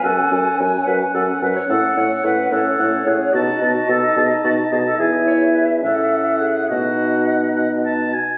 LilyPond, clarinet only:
\new Staff \with { instrumentName = "Clarinet" } { \time 6/8 \key fis \dorian \tempo 4. = 72 a'4 cis''8 b'8 a'8 b'16 cis''16 | \key b \mixolydian a'8 cis''8 b'8 a'4 gis'8 | fis'4 a'8 gis'8 fis'8 gis'16 a'16 | gis'8 cis''8 b'8 a'4 gis'8 |
fis'4. r4. | }